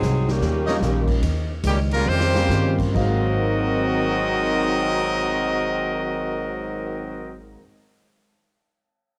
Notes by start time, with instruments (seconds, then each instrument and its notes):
Already playing: saxophone section F#3 C4 D#4 G#4
0.02 upright bass C2, steel-string acoustic guitar G#2 F#3 C4 D#4, snare, hi-hat pedal
0.28 trombone section A#2 C#3 G3, saxophone section D#3 A#3 C#4 G4, snare
0.41 upright bass D#2, steel-string acoustic guitar D#3 A#3 C#4, snare
0.45 steel-string acoustic guitar G4
0.66 upright piano G3 A#3 C#4 D#4 F4, trumpet section D#4 A#4 C#5 D#5, snare
0.80 upright bass A#1, steel-string acoustic guitar D#3 A#3 C#4 G4, snare, hi-hat pedal
1.08 kick, crash
1.21 upright bass D#2, steel-string acoustic guitar D#3 C#4 G4 C5, ride
1.63 upright bass C#2, trombone section A#2 C#3 G3, steel-string acoustic guitar D#3 C#4 G4 C5, trumpet section A#3 C#4 G4, hi-hat pedal, ride
1.91 trombone section C#3 G3 A#3, trumpet section G3 C#4 F4 A#4, ride
2.06 upright bass F2, trombone section C#3 G3 C4, steel-string acoustic guitar D#3 C#4 G4 C5, trumpet section A#3 F4 G4 C5
2.20 snare
2.34 upright piano G3 A#3 C4 C#4 F4, snare
2.49 upright bass G2, steel-string acoustic guitar D#3 C#4 G4 C5, snare, hi-hat pedal
2.79 kick, crash
2.91 upright bass G#1, steel-string acoustic guitar G#2, upright piano G#2 D#3, kick
2.95 trombone section G#2 D#3 F#3 C4, upright piano F#3 A#3 C4 F5, steel-string acoustic guitar F#3, trumpet section C4 F#4 A#4 D#5, crash
3.01 steel-string acoustic guitar C4